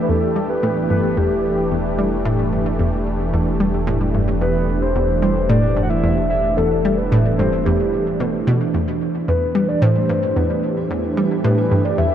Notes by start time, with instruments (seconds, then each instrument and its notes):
Already playing: analog synth pad E3 A3 D4 G4
0.02 soft synth lead B4
0.09 analog synth bass E1, synth arpeggio sound E2, soft synth lead A4
0.36 synth arpeggio sound G3
0.50 soft synth lead B4
0.63 synth arpeggio sound A2
0.90 synth arpeggio sound G2, soft synth lead B4
1.17 synth arpeggio sound E2, soft synth lead G4
1.71 synth arpeggio sound E2
1.98 synth arpeggio sound G3
2.25 synth arpeggio sound A2
2.52 synth arpeggio sound G2
2.79 synth arpeggio sound E2
3.33 synth arpeggio sound E2
3.60 synth arpeggio sound G3
3.87 synth arpeggio sound A2
4.14 synth arpeggio sound G2
4.41 synth arpeggio sound E2, soft synth lead B4
4.82 soft synth lead C5
4.95 synth arpeggio sound E2
5.22 synth arpeggio sound G3, soft synth lead C5
5.49 synth arpeggio sound A2, soft synth lead D5
5.77 synth arpeggio sound G2
5.83 soft synth lead F#5
5.90 soft synth lead E5
6.04 synth arpeggio sound E2
6.30 soft synth lead E5
6.57 synth arpeggio sound E2, soft synth lead A4
6.85 synth arpeggio sound G3
6.97 soft synth lead B4
7.12 synth arpeggio sound A2
7.38 synth arpeggio sound G2, soft synth lead C5
7.65 synth arpeggio sound E2, soft synth lead G4
8.20 synth arpeggio sound B2
8.47 synth arpeggio sound B2
8.74 synth arpeggio sound E2, analog synth pad E3, synth texture E4 E5
9.28 synth arpeggio sound E2, soft synth lead B4
9.44 analog synth pad A3
9.55 synth arpeggio sound G3, analog synth pad G4
9.69 soft synth lead D5
9.82 synth arpeggio sound A2, soft synth lead C5
10.09 synth arpeggio sound G2
10.36 synth arpeggio sound E2, soft synth lead B4
10.90 synth arpeggio sound E2
11.17 synth arpeggio sound G3
11.44 synth arpeggio sound A2, soft synth lead B4
11.71 synth arpeggio sound G2
11.85 soft synth lead D5
11.98 synth arpeggio sound E2, soft synth lead E5